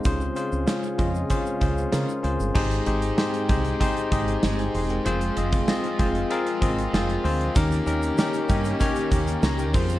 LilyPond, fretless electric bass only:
\new Staff \with { instrumentName = "Fretless electric bass" } { \clef bass \time 4/4 \key aes \major \tempo 4 = 96 des,8 r16 des,16 r8 f,8 r8 des,8 des16 r16 des,16 g,,16 | aes,,8 aes,,8 r8 c,8 r8 aes,,8 g,,8 fes,,8 | f,,8 f,,8 r8 f,,8 r8 aes,,8 f,,8 d,8 | ees,8 ees,8 r8 g,8 r8 ees,8 des,8 f,8 | }